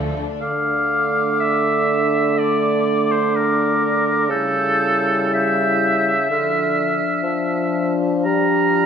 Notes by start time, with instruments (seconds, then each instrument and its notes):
Already playing: double bass section D2, cello section D3, viola section F3 A3, violin section A3 A4
0.16 violin section D4
0.41 bassoon D3, french horn section A3 D4, oboe F5, flute D6
1.40 oboe E5
2.38 oboe D5, flute D6
3.11 oboe C5
3.35 oboe A#4
4.29 bassoon C#3, french horn section G3 E4, oboe A4, flute G6
5.33 oboe E5, flute G6
6.30 bassoon D3, french horn section F3 D4, flute F6
7.23 bassoon F3
8.25 bassoon G3, oboe A#5, flute F6